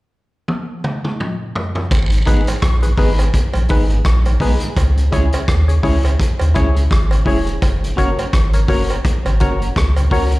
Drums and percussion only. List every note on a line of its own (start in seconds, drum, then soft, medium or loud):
0.48 high tom medium
0.84 mid tom medium
1.04 mid tom medium
1.20 mid tom medium
1.55 floor tom medium
1.75 floor tom medium
1.91 kick loud
1.91 closed hi-hat medium
1.91 cowbell medium
1.91 vibraslap medium
2.12 closed hi-hat soft
2.27 kick medium
2.27 closed hi-hat medium
2.47 closed hi-hat medium
2.47 cowbell medium
2.62 kick loud
2.62 cross-stick loud
2.62 closed hi-hat medium
2.83 closed hi-hat medium
2.98 kick medium
2.98 open hi-hat medium
3.19 closed hi-hat medium
3.19 cowbell medium
3.34 kick loud
3.34 closed hi-hat loud
3.53 closed hi-hat soft
3.53 cowbell medium
3.68 kick medium
3.68 open hi-hat medium
3.90 closed hi-hat soft
4.05 kick loud
4.05 cross-stick loud
4.05 closed hi-hat medium
4.25 closed hi-hat soft
4.25 cowbell medium
4.40 kick medium
4.40 open hi-hat medium
4.60 closed hi-hat medium
4.76 kick loud
4.76 closed hi-hat medium
4.76 cowbell medium
4.97 closed hi-hat soft
5.12 kick medium
5.12 closed hi-hat medium
5.32 closed hi-hat medium
5.32 cowbell medium
5.48 kick loud
5.48 cross-stick loud
5.48 closed hi-hat medium
5.69 closed hi-hat medium
5.83 kick medium
5.83 open hi-hat medium
6.05 closed hi-hat medium
6.05 cowbell medium
6.20 kick loud
6.20 closed hi-hat loud
6.39 closed hi-hat soft
6.39 cowbell medium
6.55 kick medium
6.55 closed hi-hat medium
6.76 closed hi-hat soft
6.91 kick loud
6.91 cross-stick loud
6.91 closed hi-hat medium
7.11 closed hi-hat soft
7.11 cowbell medium
7.26 kick medium
7.26 open hi-hat medium
7.47 closed hi-hat soft
7.62 kick loud
7.62 closed hi-hat medium
7.62 cowbell medium
7.84 closed hi-hat soft
7.98 kick medium
7.98 closed hi-hat medium
8.18 closed hi-hat soft
8.18 cowbell medium
8.33 kick loud
8.33 cross-stick loud
8.33 closed hi-hat medium
8.53 closed hi-hat medium
8.68 kick medium
8.68 open hi-hat medium
8.89 closed hi-hat soft
8.89 cowbell medium
9.05 kick loud
9.05 closed hi-hat loud
9.26 closed hi-hat soft
9.26 cowbell medium
9.40 kick medium
9.40 closed hi-hat medium
9.62 closed hi-hat soft
9.76 kick loud
9.76 cross-stick loud
9.76 closed hi-hat medium
9.96 closed hi-hat soft
9.96 cowbell medium
10.11 kick medium
10.11 open hi-hat medium
10.31 closed hi-hat medium